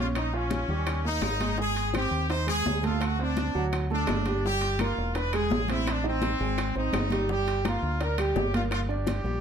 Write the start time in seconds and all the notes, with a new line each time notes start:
Already playing: A#1 C#4 C#5
0.15 D#4, high bongo, high conga, high timbale, claves
0.33 C#4 F4 F5, high conga
0.51 high bongo, high conga, high timbale
0.68 D#2 G3 G4, high bongo, high conga
0.87 high bongo, high conga, high timbale, claves
1.05 A#3 D#4 A#4, high bongo, high conga
1.22 G#1, high bongo, low bongo, high conga, high timbale, low timbale, claves
1.40 G#3 G#4, high bongo, high conga, high timbale
1.58 G#3 G#4, high bongo, high conga
1.75 high bongo, high conga, high timbale
1.94 C4 G4 C5, high bongo, high conga, high timbale, claves
2.11 D#2
2.30 D#4 C5 D#5, high bongo, high conga, high timbale
2.47 G#3 G#4, high bongo, high conga, high timbale, claves
2.66 D2, high bongo, low bongo, high conga, low timbale
2.83 A3 F4 A4, high bongo, high conga, high timbale
3.01 F#4, high bongo, high conga, high timbale, claves
3.19 C4 D4 C5, high conga
3.37 high bongo, high conga, high timbale
3.55 D2 F#3 F#4, high bongo, high conga
3.73 high bongo, high conga, high timbale, claves
3.90 A3 D4 A4, high bongo, high conga
4.07 G1, high bongo, low bongo, high conga, high timbale, low timbale, claves
4.26 G3 G4, high bongo, high conga, high timbale
4.43 G3 G4, high bongo, high conga
4.61 high bongo, high conga, high timbale
4.79 A#3 F4 A#4, high bongo, high conga, high timbale, claves
4.98 E1
5.15 D4 B4 D5, high bongo, high conga, high timbale
5.33 G#3 G#4, high bongo, high conga, high timbale, claves
5.50 A1, high bongo, low bongo, high conga, low timbale
5.68 C4 E4 C5, high bongo, high conga, high timbale
5.86 high bongo, high conga, high timbale, claves
5.90 D4
6.04 C4 D#4 D#5, high conga
6.22 high bongo, high conga, high timbale
6.39 G#1 G#3 G#4, high bongo, high conga
6.58 high bongo, high conga, high timbale, claves
6.75 G#1 C4 D#4 C5, high bongo, high conga
6.93 G1, high bongo, low bongo, high conga, high timbale, low timbale, claves
7.10 G3 G4, high bongo, high conga, high timbale
7.29 G3 G4, high bongo, high conga
7.46 high bongo, high conga, high timbale
7.65 A#3 F4 A#4, high bongo, high conga, high timbale, claves
7.82 D2
8.00 D4 A#4 D5, high bongo, high conga, high timbale
8.18 G3 G4, high bongo, high conga, high timbale, claves
8.36 G1, high bongo, low bongo, high conga, low timbale
8.53 A#3 F4 A#4, high bongo, high conga, high timbale
8.71 F4, high bongo, high conga, high timbale, claves
8.89 D4 G4 D5, high conga
9.07 high bongo, high conga, high timbale
9.24 A#1 G3 G4, high bongo, high conga